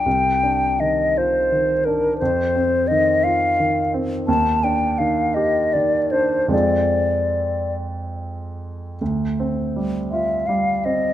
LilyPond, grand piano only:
\new Staff \with { instrumentName = "Grand piano" } { \time 6/8 \key c \minor \tempo 4. = 55 c,8 d'8 ees8 f'8 ees8 d'8 | f,8 c'8 ees8 f'8 ees8 c'8 | ees,8 d'8 ees8 g'8 ees8 d'8 | <f, aes c' f' aes'>2. |
d,8 c'8 g8 f'8 g8 c'8 | }